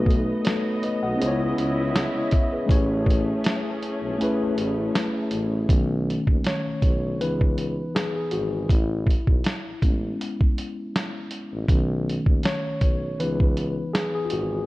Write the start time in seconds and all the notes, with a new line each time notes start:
Already playing: B1 A3 B3 D#4 F#4 B4 D#5
0.06 kick
0.11 closed hi-hat
0.45 A4 C#5, snare, closed hi-hat
0.83 B4 D#5, closed hi-hat
1.03 B1 D#5 F#5
1.16 C#2 C#3 G#3 B3 C#4 E4 G#4
1.21 C5, closed hi-hat
1.28 C#5
1.57 C#2, closed hi-hat
1.96 snare, closed hi-hat
2.18 C#5
2.31 C#5 E5, kick, closed hi-hat
2.53 G#4 B4
2.66 A1 A3 C#4 E4 G#4, kick
2.71 C#5, closed hi-hat
3.06 kick
3.10 closed hi-hat
3.44 snare, closed hi-hat
3.83 closed hi-hat
4.02 B1
4.18 A3 C#4 E4, closed hi-hat
4.22 G#4 B4
4.56 A1, closed hi-hat
4.95 snare, closed hi-hat
5.31 A1, closed hi-hat
5.69 B1 D#3 A3 C#4, kick, closed hi-hat
6.10 closed hi-hat
6.27 D#2, kick
6.44 C#5, snare, closed hi-hat
6.66 B1
6.82 B1, kick, closed hi-hat
7.20 C#2 E3 B3 D#4 B4, closed hi-hat
7.41 kick
7.58 closed hi-hat
7.95 G#4, snare, closed hi-hat
8.16 G#4
8.31 G#1 F#4, closed hi-hat
8.69 A1 E4, kick, closed hi-hat
9.07 kick, closed hi-hat
9.27 B1, kick
9.44 snare, closed hi-hat
9.66 A1
9.82 A1 G#3 B3 C#4, kick, closed hi-hat
10.21 closed hi-hat
10.41 kick
10.58 closed hi-hat
10.96 snare, closed hi-hat
11.31 closed hi-hat
11.53 A1
11.68 B1 D#3 A3 C#4, kick, closed hi-hat
12.09 closed hi-hat
12.26 D#2, kick
12.43 C#5, snare, closed hi-hat
12.65 B1
12.81 B1, kick, closed hi-hat
13.19 C#2 E3 B3 D#4 B4, closed hi-hat
13.40 kick
13.57 closed hi-hat
13.94 G#4, snare, closed hi-hat
14.15 G#4
14.25 F4
14.30 G#1 F#4, closed hi-hat